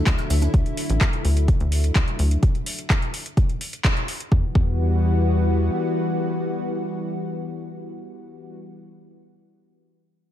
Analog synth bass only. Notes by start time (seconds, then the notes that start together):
0.06 D2
0.30 D2
0.54 D2
0.90 A1
1.25 D2
1.60 D2
1.95 D2
2.19 D2
4.32 E2
4.55 E2